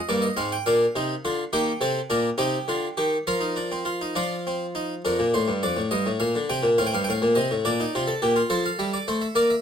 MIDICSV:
0, 0, Header, 1, 2, 480
1, 0, Start_track
1, 0, Tempo, 582524
1, 1257, Time_signature, 6, 3, 24, 8
1, 4627, Tempo, 575264
1, 7965, End_track
2, 0, Start_track
2, 0, Title_t, "Harpsichord"
2, 0, Program_c, 0, 6
2, 72, Note_on_c, 0, 43, 62
2, 72, Note_on_c, 0, 74, 64
2, 77, Note_on_c, 0, 58, 77
2, 181, Note_on_c, 0, 75, 64
2, 185, Note_off_c, 0, 74, 0
2, 218, Note_off_c, 0, 43, 0
2, 221, Note_off_c, 0, 58, 0
2, 299, Note_off_c, 0, 75, 0
2, 301, Note_on_c, 0, 60, 72
2, 303, Note_on_c, 0, 44, 65
2, 303, Note_on_c, 0, 77, 67
2, 420, Note_off_c, 0, 77, 0
2, 431, Note_on_c, 0, 79, 64
2, 450, Note_off_c, 0, 60, 0
2, 451, Note_off_c, 0, 44, 0
2, 543, Note_off_c, 0, 79, 0
2, 545, Note_on_c, 0, 77, 69
2, 547, Note_on_c, 0, 46, 71
2, 550, Note_on_c, 0, 62, 83
2, 694, Note_off_c, 0, 46, 0
2, 696, Note_off_c, 0, 62, 0
2, 787, Note_on_c, 0, 48, 63
2, 790, Note_on_c, 0, 63, 74
2, 933, Note_off_c, 0, 48, 0
2, 935, Note_off_c, 0, 63, 0
2, 1028, Note_on_c, 0, 50, 69
2, 1029, Note_on_c, 0, 65, 82
2, 1172, Note_off_c, 0, 50, 0
2, 1173, Note_off_c, 0, 65, 0
2, 1236, Note_off_c, 0, 77, 0
2, 1260, Note_on_c, 0, 51, 72
2, 1260, Note_on_c, 0, 67, 75
2, 1261, Note_on_c, 0, 58, 89
2, 1262, Note_on_c, 0, 79, 73
2, 1405, Note_off_c, 0, 67, 0
2, 1406, Note_off_c, 0, 51, 0
2, 1406, Note_off_c, 0, 58, 0
2, 1490, Note_on_c, 0, 48, 75
2, 1493, Note_on_c, 0, 69, 71
2, 1496, Note_on_c, 0, 60, 83
2, 1638, Note_off_c, 0, 48, 0
2, 1640, Note_off_c, 0, 69, 0
2, 1642, Note_off_c, 0, 60, 0
2, 1729, Note_on_c, 0, 62, 85
2, 1731, Note_on_c, 0, 70, 74
2, 1732, Note_on_c, 0, 46, 83
2, 1877, Note_off_c, 0, 62, 0
2, 1879, Note_off_c, 0, 70, 0
2, 1880, Note_off_c, 0, 46, 0
2, 1960, Note_on_c, 0, 63, 87
2, 1962, Note_on_c, 0, 48, 69
2, 1966, Note_on_c, 0, 67, 74
2, 2112, Note_off_c, 0, 63, 0
2, 2113, Note_off_c, 0, 48, 0
2, 2208, Note_on_c, 0, 50, 64
2, 2213, Note_on_c, 0, 65, 70
2, 2358, Note_off_c, 0, 50, 0
2, 2361, Note_off_c, 0, 65, 0
2, 2440, Note_off_c, 0, 67, 0
2, 2450, Note_on_c, 0, 67, 74
2, 2455, Note_on_c, 0, 51, 64
2, 2600, Note_off_c, 0, 67, 0
2, 2604, Note_off_c, 0, 51, 0
2, 2663, Note_off_c, 0, 79, 0
2, 2695, Note_on_c, 0, 77, 60
2, 2696, Note_on_c, 0, 65, 66
2, 2696, Note_on_c, 0, 70, 57
2, 2697, Note_on_c, 0, 53, 66
2, 2807, Note_on_c, 0, 63, 53
2, 2813, Note_off_c, 0, 65, 0
2, 2929, Note_off_c, 0, 63, 0
2, 2935, Note_on_c, 0, 62, 60
2, 3054, Note_off_c, 0, 62, 0
2, 3061, Note_on_c, 0, 60, 62
2, 3174, Note_on_c, 0, 65, 67
2, 3177, Note_off_c, 0, 60, 0
2, 3294, Note_off_c, 0, 65, 0
2, 3308, Note_on_c, 0, 63, 46
2, 3401, Note_off_c, 0, 70, 0
2, 3401, Note_off_c, 0, 77, 0
2, 3402, Note_off_c, 0, 53, 0
2, 3422, Note_off_c, 0, 63, 0
2, 3423, Note_on_c, 0, 53, 57
2, 3424, Note_on_c, 0, 62, 62
2, 3427, Note_on_c, 0, 65, 55
2, 3431, Note_on_c, 0, 77, 61
2, 3573, Note_off_c, 0, 62, 0
2, 3682, Note_on_c, 0, 60, 53
2, 3827, Note_off_c, 0, 60, 0
2, 3915, Note_on_c, 0, 63, 52
2, 4062, Note_off_c, 0, 63, 0
2, 4128, Note_off_c, 0, 53, 0
2, 4130, Note_off_c, 0, 65, 0
2, 4132, Note_off_c, 0, 77, 0
2, 4159, Note_on_c, 0, 62, 62
2, 4160, Note_on_c, 0, 41, 67
2, 4164, Note_on_c, 0, 70, 78
2, 4271, Note_off_c, 0, 41, 0
2, 4278, Note_on_c, 0, 46, 66
2, 4308, Note_off_c, 0, 70, 0
2, 4390, Note_off_c, 0, 46, 0
2, 4400, Note_on_c, 0, 45, 64
2, 4400, Note_on_c, 0, 72, 88
2, 4511, Note_off_c, 0, 45, 0
2, 4513, Note_on_c, 0, 43, 64
2, 4545, Note_off_c, 0, 72, 0
2, 4627, Note_off_c, 0, 43, 0
2, 4639, Note_on_c, 0, 74, 85
2, 4642, Note_on_c, 0, 41, 77
2, 4752, Note_off_c, 0, 41, 0
2, 4752, Note_on_c, 0, 45, 65
2, 4785, Note_off_c, 0, 74, 0
2, 4867, Note_off_c, 0, 45, 0
2, 4873, Note_on_c, 0, 75, 93
2, 4876, Note_on_c, 0, 43, 74
2, 4990, Note_off_c, 0, 43, 0
2, 4999, Note_on_c, 0, 45, 72
2, 5021, Note_off_c, 0, 75, 0
2, 5112, Note_off_c, 0, 45, 0
2, 5113, Note_on_c, 0, 77, 72
2, 5114, Note_on_c, 0, 46, 61
2, 5230, Note_off_c, 0, 46, 0
2, 5244, Note_on_c, 0, 50, 72
2, 5262, Note_off_c, 0, 77, 0
2, 5355, Note_off_c, 0, 50, 0
2, 5361, Note_on_c, 0, 79, 86
2, 5362, Note_on_c, 0, 48, 72
2, 5471, Note_on_c, 0, 46, 72
2, 5474, Note_off_c, 0, 48, 0
2, 5508, Note_off_c, 0, 79, 0
2, 5565, Note_off_c, 0, 62, 0
2, 5588, Note_off_c, 0, 46, 0
2, 5600, Note_on_c, 0, 60, 64
2, 5601, Note_on_c, 0, 77, 81
2, 5602, Note_on_c, 0, 45, 68
2, 5664, Note_off_c, 0, 77, 0
2, 5670, Note_on_c, 0, 79, 75
2, 5714, Note_off_c, 0, 45, 0
2, 5730, Note_on_c, 0, 43, 71
2, 5732, Note_off_c, 0, 79, 0
2, 5736, Note_on_c, 0, 77, 72
2, 5798, Note_off_c, 0, 77, 0
2, 5818, Note_on_c, 0, 79, 84
2, 5838, Note_off_c, 0, 43, 0
2, 5856, Note_on_c, 0, 45, 69
2, 5866, Note_on_c, 0, 77, 85
2, 5872, Note_off_c, 0, 79, 0
2, 5961, Note_off_c, 0, 45, 0
2, 5967, Note_on_c, 0, 46, 62
2, 6069, Note_off_c, 0, 77, 0
2, 6076, Note_off_c, 0, 46, 0
2, 6076, Note_on_c, 0, 75, 80
2, 6083, Note_on_c, 0, 48, 72
2, 6194, Note_off_c, 0, 48, 0
2, 6210, Note_on_c, 0, 45, 64
2, 6224, Note_off_c, 0, 75, 0
2, 6295, Note_off_c, 0, 60, 0
2, 6318, Note_off_c, 0, 45, 0
2, 6325, Note_on_c, 0, 46, 79
2, 6325, Note_on_c, 0, 74, 90
2, 6331, Note_on_c, 0, 62, 69
2, 6438, Note_off_c, 0, 62, 0
2, 6451, Note_on_c, 0, 63, 74
2, 6470, Note_off_c, 0, 46, 0
2, 6558, Note_off_c, 0, 63, 0
2, 6576, Note_on_c, 0, 65, 69
2, 6578, Note_on_c, 0, 48, 67
2, 6678, Note_on_c, 0, 69, 75
2, 6680, Note_off_c, 0, 65, 0
2, 6718, Note_off_c, 0, 48, 0
2, 6791, Note_off_c, 0, 69, 0
2, 6802, Note_on_c, 0, 67, 67
2, 6804, Note_on_c, 0, 46, 66
2, 6913, Note_off_c, 0, 67, 0
2, 6915, Note_on_c, 0, 65, 69
2, 6948, Note_off_c, 0, 46, 0
2, 7015, Note_off_c, 0, 74, 0
2, 7029, Note_off_c, 0, 65, 0
2, 7032, Note_on_c, 0, 69, 84
2, 7035, Note_on_c, 0, 72, 75
2, 7036, Note_on_c, 0, 53, 97
2, 7149, Note_off_c, 0, 72, 0
2, 7164, Note_on_c, 0, 77, 76
2, 7183, Note_off_c, 0, 53, 0
2, 7273, Note_off_c, 0, 77, 0
2, 7275, Note_on_c, 0, 55, 80
2, 7279, Note_on_c, 0, 76, 76
2, 7391, Note_off_c, 0, 76, 0
2, 7397, Note_on_c, 0, 74, 69
2, 7422, Note_off_c, 0, 55, 0
2, 7509, Note_off_c, 0, 74, 0
2, 7518, Note_on_c, 0, 57, 96
2, 7518, Note_on_c, 0, 72, 82
2, 7630, Note_off_c, 0, 72, 0
2, 7630, Note_on_c, 0, 76, 68
2, 7664, Note_off_c, 0, 57, 0
2, 7728, Note_off_c, 0, 69, 0
2, 7745, Note_on_c, 0, 58, 98
2, 7746, Note_off_c, 0, 76, 0
2, 7748, Note_on_c, 0, 70, 75
2, 7749, Note_on_c, 0, 74, 77
2, 7865, Note_off_c, 0, 74, 0
2, 7870, Note_on_c, 0, 76, 78
2, 7895, Note_off_c, 0, 58, 0
2, 7897, Note_off_c, 0, 70, 0
2, 7965, Note_off_c, 0, 76, 0
2, 7965, End_track
0, 0, End_of_file